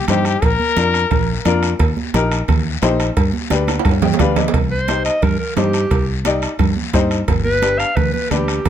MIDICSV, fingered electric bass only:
0, 0, Header, 1, 2, 480
1, 0, Start_track
1, 0, Tempo, 342857
1, 595, Time_signature, 4, 2, 24, 8
1, 12166, End_track
2, 0, Start_track
2, 0, Title_t, "Fingered electric bass"
2, 0, Program_c, 0, 33
2, 114, Note_on_c, 0, 43, 101
2, 499, Note_off_c, 0, 43, 0
2, 597, Note_on_c, 0, 34, 97
2, 788, Note_off_c, 0, 34, 0
2, 1076, Note_on_c, 0, 41, 100
2, 1460, Note_off_c, 0, 41, 0
2, 1558, Note_on_c, 0, 34, 93
2, 1941, Note_off_c, 0, 34, 0
2, 2038, Note_on_c, 0, 41, 108
2, 2421, Note_off_c, 0, 41, 0
2, 2518, Note_on_c, 0, 39, 106
2, 2709, Note_off_c, 0, 39, 0
2, 2998, Note_on_c, 0, 34, 108
2, 3381, Note_off_c, 0, 34, 0
2, 3482, Note_on_c, 0, 39, 94
2, 3863, Note_off_c, 0, 39, 0
2, 3955, Note_on_c, 0, 34, 107
2, 4338, Note_off_c, 0, 34, 0
2, 4435, Note_on_c, 0, 43, 99
2, 4627, Note_off_c, 0, 43, 0
2, 4915, Note_on_c, 0, 38, 98
2, 5299, Note_off_c, 0, 38, 0
2, 5394, Note_on_c, 0, 43, 94
2, 5778, Note_off_c, 0, 43, 0
2, 5875, Note_on_c, 0, 38, 104
2, 6259, Note_off_c, 0, 38, 0
2, 6354, Note_on_c, 0, 36, 100
2, 7123, Note_off_c, 0, 36, 0
2, 7319, Note_on_c, 0, 43, 93
2, 7510, Note_off_c, 0, 43, 0
2, 7796, Note_on_c, 0, 43, 94
2, 8180, Note_off_c, 0, 43, 0
2, 8276, Note_on_c, 0, 36, 106
2, 9045, Note_off_c, 0, 36, 0
2, 9234, Note_on_c, 0, 43, 92
2, 9427, Note_off_c, 0, 43, 0
2, 9715, Note_on_c, 0, 43, 88
2, 10100, Note_off_c, 0, 43, 0
2, 10192, Note_on_c, 0, 31, 103
2, 10962, Note_off_c, 0, 31, 0
2, 11156, Note_on_c, 0, 38, 95
2, 11349, Note_off_c, 0, 38, 0
2, 11637, Note_on_c, 0, 38, 87
2, 12022, Note_off_c, 0, 38, 0
2, 12118, Note_on_c, 0, 31, 108
2, 12166, Note_off_c, 0, 31, 0
2, 12166, End_track
0, 0, End_of_file